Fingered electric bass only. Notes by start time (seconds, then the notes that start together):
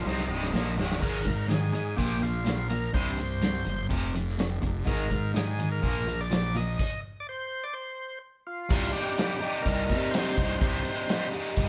0.06 C2
0.29 C1
0.54 A#1
0.78 C1
1.02 G#1
1.26 G#2
1.98 A#1
2.94 C2
3.66 F#1
3.90 F1
4.63 F1
4.87 G#1
5.11 G#2
5.84 A#1
8.70 C2
9.66 C2
9.90 C3
10.38 C2
10.61 C2
11.57 G1